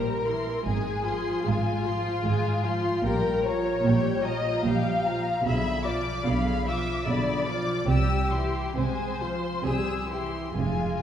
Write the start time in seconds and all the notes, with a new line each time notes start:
Already playing: A#1 A#2 G3 G4 A#4 A#5
0.27 E3 E4 C6
0.65 G#1 G#2 G#3 G#4 G#5
1.06 F3 F4 C6
1.45 G#1 G#2 G#3 F4 G#4 G#5
1.86 F3 F4 C6
2.24 G#1 G#2 G#3 G#4 G#5
2.65 F3 F4 C6
3.03 A#1 A#2 G3 G4 A#4 G5
3.45 F3 F4 C#5 A#5
3.85 A#1 A#2 G3 G4 G5
4.25 F3 F4 D#5 A#5
4.65 A#1 A#2 G3 G4 F5 G5
5.05 F3 F4 A#5
5.44 B1 B2 D3 G#4 E5 B5
5.86 F3 F4 D5 D6
6.25 B1 B2 D3 G#4 F5 B5
6.66 F3 F4 E5 D6
7.07 B1 B2 D3 G#4 D5 B5
7.47 F3 F4 D6
7.88 C2 C3 G3 G4 E6
8.32 E3 E4 C6
8.77 C2 C3 G#3 G#4 C5 G#5
9.22 F3 F4 C6
9.64 C2 C3 G3 G4 G#4 E6
10.09 E3 E4 G4 C6
10.55 F1 F2 G#3 F4 G#4 G#5